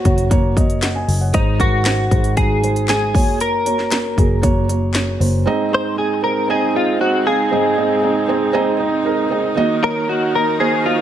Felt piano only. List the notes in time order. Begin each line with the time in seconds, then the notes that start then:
Already playing: A#3 F#4 C5 C#5
0.04 A#3 F#4 C#5
0.30 A#3 F#4 C#5
0.56 A#3 F#4 D#5
0.82 C#5 F#5
0.95 D#5 G#5
1.21 C#5 F#5
1.33 G#2 G#3 D#4 C5
1.59 G#3 D#4 A#4
1.85 G#3 D#4 C5
2.11 G#3 D#4 C5
2.36 G#3 D#4 F#4
2.62 G#3 D#4 C5
2.88 G#3 D#4 C5
3.14 A#3 F#4 C#5
3.65 A#3 F#4 C#5
3.90 A#3 F#4 C#5
4.16 A#3 F#4 G#4
4.42 A#3 F#4 C#5
4.68 A#3 F#4 C#5
4.93 A#3 F#4 C#5
5.19 A#3 F#4 C5
5.46 G#2 C4 D#4 G#4 D#5
5.71 C4 D#4 G#4 D#5
5.96 C4 D#4 G#4 D#5
6.22 C4 D#4 G#4 C5
6.48 C4 D#4 G#4 D#5
6.74 C4 D#4 G#4 D#5
6.99 C4 D#4 G#4 C5
7.25 C4 D#4 G#4 F5
7.51 G#2 C4 D#4 G#4 D#5
7.77 C4 D#4 G#4 D#5
8.02 C4 D#4 G#4 D#5
8.28 C4 D#4 G#4 C5
8.53 C4 D#4 G#4 D#5
8.79 C4 D#4 G#4 D#5
9.04 C4 D#4 G#4 A#4
9.30 C4 D#4 G#4 D#5
9.55 D#3 A#3 D#4 F#4 D#5
9.82 D#4 C#5
10.07 A#3 D#4 F#4 D#5
10.33 A#3 D#4 F#4 D#5
10.59 A#3 D#4 F#4 C5
10.84 A#3 D#4 F#4 D#5